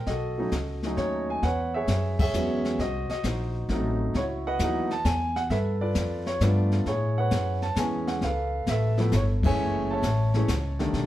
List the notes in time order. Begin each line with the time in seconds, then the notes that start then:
0.07 B1 F#4 A4 D#5, brush sweep, kick, snare
0.38 F#3 A3 C#4 D#4
0.52 C#2, kick, snare, hi-hat pedal
0.83 F#3 A3 C#4 D#4, snare
0.97 D#2 C#5, kick, snare
1.30 G#5
1.43 E2 B4 C#5 F#5, brush sweep, kick, snare
1.74 G#4 C#5 E5
1.88 F#2, kick, snare, hi-hat pedal
2.19 G#4 C#5 E5, kick, crash
2.34 E2 F#3 G#3 B3 C#4, hi-hat pedal
2.65 snare
2.79 C2 F#4 C5 D#5, brush sweep, kick, snare
3.10 D#5, muted upright bass stroke, snare
3.24 A#1 D#4 F#4 C5, kick, snare, hi-hat pedal
3.69 A1 F#3 A3 C4 D#4, kick, snare
4.14 C#2 E4 F#4 C#5, brush sweep, kick, snare
4.47 B4 D#5 F#5
4.59 D#2 E3 F#3 B3, kick, snare, hi-hat pedal
4.63 D#4
4.91 A5, snare
5.05 E2 G#5, kick, snare, hi-hat pedal
5.36 F#5, snare
5.50 G2 A4 B4 E5, brush sweep, kick, snare
5.81 F4 B4 D5
5.95 F2, kick, snare, hi-hat pedal
6.26 C#5, snare
6.40 G2 F3 A3 B3 D4 F4 B4 D5, kick, snare, hi-hat pedal
6.72 snare
6.86 A2 E4 G#4 C#5, brush sweep, kick, snare
7.18 B4 C#5 F#5
7.31 F#2, kick, snare, hi-hat pedal
7.62 A5, snare
7.76 E2 E3 G#3 B3 G#5, kick, snare, hi-hat pedal
7.80 C#4
8.07 F#5, snare
8.21 C#2 B4 F5, brush sweep, kick, snare
8.25 A4
8.66 A1 E5, kick, snare, hi-hat pedal
8.71 A4 B4
8.98 F3 A3 B3 E4, snare
9.12 G1 C#5, kick, snare, hi-hat pedal
9.43 E3 G#3 A3 C#4 G#5, kick, crash
9.47 C#5 E5
9.57 F#1, brush sweep
9.90 C#5 E5 A5
10.02 A1, kick, snare, hi-hat pedal
10.34 E3 G#3 A3 C#4, snare
10.48 C#2, kick, snare, hi-hat pedal
10.79 D#3 G3 A3 D4, snare
10.93 B1, brush sweep, kick, snare